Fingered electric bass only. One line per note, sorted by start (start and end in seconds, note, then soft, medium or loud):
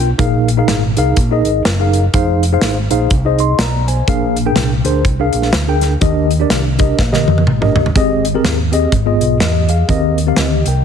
0.00 0.11 B1 medium
0.19 0.60 A#1 medium
0.68 0.93 G#1 medium
0.97 1.14 C2 medium
1.17 1.41 A#1 medium
1.45 1.62 G#1 medium
1.65 2.06 F#1 medium
2.14 2.55 F1 medium
2.62 2.87 G#1 medium
2.90 3.07 A#1 medium
3.11 3.52 C2 medium
3.59 4.00 B1 medium
4.08 4.49 A#1 medium
4.56 4.81 C2 medium
4.85 5.02 D2 medium
5.05 5.29 C2 medium
5.33 5.50 A#1 medium
5.53 5.94 D2 medium
6.02 6.43 D#2 loud
6.50 6.91 C2 medium
6.99 7.23 A#1 medium
7.27 7.44 F2 medium
7.47 7.88 A1 medium
7.95 8.37 G#1 loud
8.44 8.85 D#2 medium
8.92 9.17 G#1 medium
9.20 9.37 B1 medium
9.40 9.81 E2 medium
9.89 10.30 D#2 loud
10.37 10.61 D2 medium
10.66 10.83 C2 medium